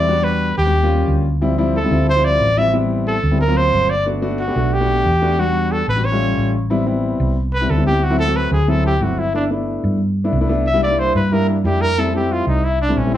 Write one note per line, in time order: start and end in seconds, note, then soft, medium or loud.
0.00 0.52 E2 medium
0.00 0.25 D5 loud
0.08 0.49 G3 medium
0.08 0.49 B3 medium
0.08 0.49 D4 medium
0.08 0.49 F#4 medium
0.24 0.57 B4 medium
0.57 1.04 D#2 medium
0.57 1.20 G4 medium
0.66 0.75 G3 medium
0.66 0.75 B3 medium
0.66 0.75 D4 medium
0.66 0.75 F#4 medium
0.83 1.24 G3 medium
0.83 1.24 A#3 medium
0.83 1.24 C#4 medium
0.83 1.24 F4 medium
1.08 1.85 D2 medium
1.41 1.53 F3 medium
1.41 1.53 G3 medium
1.41 1.53 C4 medium
1.41 1.53 E4 loud
1.58 1.75 F3 loud
1.58 1.75 G3 medium
1.58 1.75 C4 medium
1.58 1.76 E4 loud
1.76 2.06 A4 medium
1.83 1.89 F3 medium
1.83 1.89 G3 medium
1.83 1.89 C4 medium
1.83 1.89 E4 medium
1.91 2.37 D2 medium
1.91 2.08 F3 medium
1.91 2.08 G3 medium
1.91 2.09 C4 medium
1.91 2.09 E4 medium
2.09 2.26 C5 loud
2.16 2.45 F3 medium
2.16 2.45 G3 medium
2.16 2.45 C4 medium
2.16 2.45 E4 medium
2.25 2.59 D5 loud
2.40 3.18 A1 medium
2.57 2.69 F3 medium
2.57 2.69 G3 medium
2.57 2.69 C4 medium
2.57 2.69 E4 medium
2.57 2.74 E5 loud
2.73 3.14 G3 medium
2.73 3.14 B3 medium
2.73 3.14 C4 medium
2.73 3.14 E4 medium
3.07 3.38 A4 medium
3.23 3.70 D2 medium
3.31 3.40 G3 medium
3.31 3.40 B3 medium
3.31 3.40 C4 medium
3.31 3.40 E4 medium
3.41 3.59 A#4 medium
3.48 3.89 F#3 medium
3.48 3.89 A#3 medium
3.48 3.89 C4 medium
3.48 3.89 F4 medium
3.57 3.92 C5 loud
3.73 4.50 G1 medium
3.90 4.07 D5 loud
4.06 4.18 A3 medium
4.06 4.18 B3 medium
4.06 4.18 D4 medium
4.06 4.18 F#4 medium
4.22 4.40 A3 medium
4.22 4.40 B3 medium
4.22 4.40 D4 medium
4.22 4.40 F#4 loud
4.40 4.75 F#4 medium
4.47 4.53 A3 medium
4.47 4.53 B3 medium
4.47 4.53 D4 medium
4.47 4.54 G4 medium
4.55 5.02 B1 medium
4.55 4.73 A3 medium
4.55 4.73 B3 medium
4.55 4.73 D4 medium
4.55 4.73 F#4 medium
4.73 5.41 G4 loud
4.80 5.09 A3 medium
4.80 5.09 B3 medium
4.80 5.10 D4 medium
4.80 5.10 F#4 medium
5.06 5.82 E2 medium
5.21 5.33 A3 medium
5.21 5.33 B3 medium
5.21 5.33 D4 medium
5.21 5.33 F#4 loud
5.38 5.79 G3 medium
5.38 5.79 B3 medium
5.38 5.79 D4 medium
5.38 5.79 F#4 loud
5.38 5.73 F#4 medium
5.72 5.88 A4 loud
5.88 6.34 A1 loud
5.88 6.06 B4 loud
5.96 6.04 G3 medium
5.96 6.04 B3 medium
5.96 6.04 D4 medium
5.96 6.05 F#4 medium
6.05 6.54 C#5 loud
6.12 6.53 G3 medium
6.12 6.53 A3 medium
6.12 6.53 C#4 medium
6.12 6.53 F4 medium
6.37 7.14 A1 medium
6.70 6.82 G3 medium
6.70 6.82 B3 medium
6.70 6.82 C4 medium
6.70 6.82 E4 loud
6.86 7.33 G3 medium
6.86 7.33 B3 medium
6.86 7.33 C4 medium
6.86 7.33 E4 medium
7.20 7.66 C2 loud
7.54 7.72 B4 loud
7.61 7.73 G3 medium
7.61 7.73 B3 medium
7.61 7.73 C4 medium
7.61 7.73 E4 medium
7.69 8.46 D2 medium
7.69 7.86 A4 medium
7.77 7.83 G3 medium
7.77 7.83 B3 medium
7.77 7.83 C4 medium
7.77 7.83 E4 medium
7.86 8.02 G3 medium
7.86 8.02 B3 medium
7.86 8.02 C4 medium
7.86 8.03 E4 medium
7.86 8.05 G4 loud
8.04 8.19 F#4 medium
8.10 8.22 F#3 medium
8.10 8.22 A3 medium
8.10 8.22 C4 medium
8.10 8.22 E4 loud
8.19 8.38 A4 loud
8.27 8.56 F#3 medium
8.27 8.56 A3 medium
8.27 8.56 C4 medium
8.27 8.56 F#4 medium
8.36 8.52 B4 medium
8.52 8.98 D2 medium
8.52 8.71 G#4 medium
8.68 8.91 F#3 medium
8.68 8.91 A3 medium
8.68 8.91 C4 medium
8.68 8.91 E4 medium
8.68 8.85 A4 loud
8.86 9.04 G4 medium
9.01 9.78 G1 medium
9.01 9.24 F#3 medium
9.01 9.24 A3 medium
9.01 9.24 C4 medium
9.01 9.24 E4 medium
9.01 9.20 F#4 medium
9.19 9.35 E4 medium
9.34 9.46 A3 medium
9.34 9.46 B3 medium
9.34 9.46 D4 medium
9.34 9.45 D4 medium
9.34 9.46 E4 medium
9.51 9.97 A3 medium
9.51 9.97 B3 medium
9.51 9.97 D4 medium
9.51 9.97 E4 medium
9.84 10.30 G2 medium
10.24 10.36 A3 medium
10.24 10.36 B3 medium
10.24 10.36 D4 medium
10.24 10.36 E4 medium
10.33 11.09 C2 medium
10.41 10.47 A3 medium
10.41 10.47 B3 medium
10.41 10.47 D4 medium
10.41 10.47 E4 medium
10.49 10.66 A3 loud
10.49 10.66 B3 medium
10.49 10.66 D4 medium
10.49 10.66 E4 medium
10.67 10.82 E5 medium
10.73 10.85 G3 loud
10.73 10.85 A#3 medium
10.73 10.85 D4 medium
10.73 10.85 E4 loud
10.83 11.01 D5 medium
10.90 11.19 G3 medium
10.90 11.19 A#3 medium
10.90 11.19 D4 medium
10.90 11.19 E4 medium
10.99 11.15 C5 medium
11.15 11.61 G2 medium
11.15 11.34 B4 medium
11.31 11.55 G3 medium
11.31 11.55 A#3 medium
11.31 11.55 D4 medium
11.31 11.55 E4 medium
11.31 11.49 A#4 medium
11.50 11.66 D4 medium
11.64 12.41 F2 medium
11.64 11.88 G3 medium
11.64 11.88 A#3 medium
11.64 11.88 D4 medium
11.64 11.88 E4 medium
11.64 11.83 G4 medium
11.81 12.00 A#4 loud
11.97 12.09 G3 medium
11.97 12.09 A3 medium
11.97 12.09 C4 medium
11.97 12.09 E4 medium
11.97 12.15 A4 medium
12.14 12.60 G3 medium
12.14 12.60 A3 medium
12.14 12.60 C4 medium
12.14 12.60 E4 medium
12.14 12.34 G4 medium
12.32 12.48 F4 medium
12.47 12.93 C2 medium
12.47 12.66 D#4 medium
12.65 12.81 E4 loud
12.81 12.99 D4 medium
12.88 13.00 G3 medium
12.88 13.00 A3 medium
12.88 13.00 C4 medium
12.88 13.00 E4 medium
12.96 13.17 A#1 medium
12.96 13.14 C#4 medium
13.05 13.11 G3 medium
13.05 13.11 A3 medium
13.05 13.11 C4 medium
13.05 13.11 E4 medium
13.13 13.17 G3 medium
13.13 13.17 A3 medium
13.13 13.17 C4 medium
13.13 13.17 E4 medium